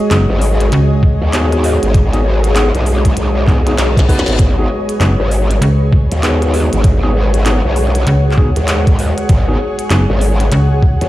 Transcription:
Already playing: G#3 F#4 G#4 C#5 D#5
0.11 F#1 B3 D#4 F#4 G#4, clap, closed hi-hat
0.30 G#1
0.41 open hi-hat
0.60 closed hi-hat
0.72 C#2, closed hi-hat
1.03 kick
1.21 D#2
1.33 B3 D#4 F#4 G#4, clap, closed hi-hat
1.52 cross-stick, closed hi-hat
1.64 open hi-hat
1.83 G#1, closed hi-hat
1.94 kick, closed hi-hat
2.13 B3 D#4 F#4 G#4, closed hi-hat
2.44 closed hi-hat
2.55 B3 D#4 F#4 G#4, clap, closed hi-hat
2.75 B1, closed hi-hat
2.86 open hi-hat
3.05 kick, closed hi-hat
3.17 B1, closed hi-hat, reverse cymbal
3.47 B3 D#4 F#4 G#4, kick, clap
3.66 B3 D#4 F#4 G#4, closed hi-hat
3.78 B1, snare, clap, closed hi-hat
3.97 kick, snare, closed hi-hat
4.09 B3 D#4 F#4 B4, kick, open hi-hat
4.19 snare
4.26 G#1, snare, closed hi-hat
4.30 snare
4.33 snare
4.39 G#1 B4, kick, closed hi-hat
4.58 B3 D#4 F#4 G#4
4.89 closed hi-hat
5.00 F#1 B3 D#4 F#4 G#4, clap, closed hi-hat
5.20 G#1
5.31 open hi-hat
5.51 closed hi-hat
5.61 C#2, closed hi-hat
5.93 kick
6.01 F#5
6.12 D#2, closed hi-hat
6.23 B3 D#4 F#4 G#4, clap, closed hi-hat
6.42 cross-stick, closed hi-hat
6.54 open hi-hat
6.73 G#1, closed hi-hat
6.84 kick, closed hi-hat
7.03 B3 D#4 F#4 G#4
7.34 closed hi-hat
7.46 B3 D#4 F#4 G#4, clap, closed hi-hat
7.65 B1
7.76 open hi-hat
7.95 closed hi-hat
8.07 C#2, closed hi-hat
8.31 clap
8.38 B3 D#4 F#4 G#4, kick
8.56 D#2, closed hi-hat
8.68 clap, closed hi-hat
8.87 kick, closed hi-hat
8.99 open hi-hat
9.18 cross-stick, closed hi-hat
9.29 G#1 G#4, kick, closed hi-hat
9.48 B3 D#4 F#4 G#4
9.79 closed hi-hat
9.90 F#1 B3 D#4 F#4 G#4, clap, closed hi-hat
10.10 G#1
10.21 open hi-hat
10.40 closed hi-hat
10.52 C#2, closed hi-hat
10.83 kick
11.01 D#2, closed hi-hat

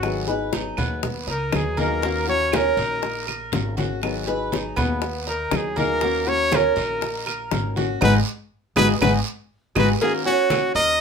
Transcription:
Already playing: G#1 F#4
0.03 D#3 F#3 B3 D#4 G#4, high bongo, high conga, long guiro, claves
0.27 F#3 B3 D#4 G#4 B4, high bongo, high conga
0.53 F#3 B3 D#4 G#4, high bongo, high conga, short guiro
0.77 D#2 B3, high bongo, high conga, low conga, short guiro, claves
1.03 muted nylon-string guitar stroke, high bongo, high conga, low conga, long guiro
1.27 C#2 D#4 A#4, high bongo, high conga
1.52 D#2 F#3 B3 D#4 G#4, high bongo, low bongo, high conga, short guiro, claves
1.77 F#3 A#3 B3 D#4 G#4 A#4, high conga, short guiro
2.02 D#3 A#3 C#4 F#4, high bongo, high conga, long guiro
2.28 A#3 C#4 F#4 C#5, high bongo, high conga
2.52 D#3 A#3 C#4 F#4 A#4, high bongo, high conga, short guiro, claves
2.77 A#1 D#4, high bongo, high conga, short guiro
3.02 muted nylon-string guitar stroke, high bongo, high conga, long guiro
3.27 A#4, high bongo, high conga, claves
3.52 G#1 D#3 A#3 C#4 F#4, high bongo, low bongo, high conga, short guiro
3.77 A#3 C#4 F#4, high conga, short guiro
4.02 D#3 F#3 B3 D#4 G#4, high bongo, high conga, long guiro, claves
4.27 F#3 B3 D#4 G#4 B4, high bongo, high conga
4.52 F#3 B3 D#4 G#4, high bongo, high conga, short guiro
4.76 D#2 B3, high bongo, high conga, low conga, short guiro, claves
5.02 muted nylon-string guitar stroke, high bongo, high conga, long guiro
5.27 D#4 A#4, high bongo, high conga
5.51 D#2 F#3 B3 D#4 G#4, high bongo, low bongo, high conga, short guiro, claves
5.56 G#4
5.76 F#3 A#3 B3 D#4 G#4 A#4, high conga, short guiro
6.01 D#3 A#3 C#4 F#4, high bongo, high conga, long guiro
6.27 A#3 C#4 F#4 C#5, high bongo, high conga
6.52 D#3 A#3 C#4 F#4 A#4, high bongo, high conga, short guiro, claves
6.76 A#1 D#4, high bongo, high conga, short guiro
7.01 muted nylon-string guitar stroke, high bongo, high conga, long guiro
7.26 A#4, high bongo, high conga, claves
7.51 G#1 D#3 A#3 C#4 F#4, high bongo, low bongo, high conga, short guiro
7.76 A#3 C#4 F#4, high conga, short guiro
8.01 G#1 G#3 B3 D#4 F#4 G#4 B4, low bongo, high conga, long guiro, claves
8.76 G#1 G#3 B3 D#4 F#4 G#4 B4, low bongo, high conga, long guiro, claves
9.01 G#1 G#3 B3 D#4 F#4 G#4 B4, low bongo, high conga, long guiro, claves
9.75 G#1 G#3 B3 D#4 F#4 G#4 B4, low bongo, high conga, long guiro, claves
10.01 D#3 A#3 C#4 F#4 G#4, cowbell, high conga, long guiro
10.26 A#3 C#4 F#4, high conga
10.50 D#3 A#3 C#4 F#4, cowbell, high conga, short guiro, claves
10.75 D#2 A#4 D#5, high conga, short guiro

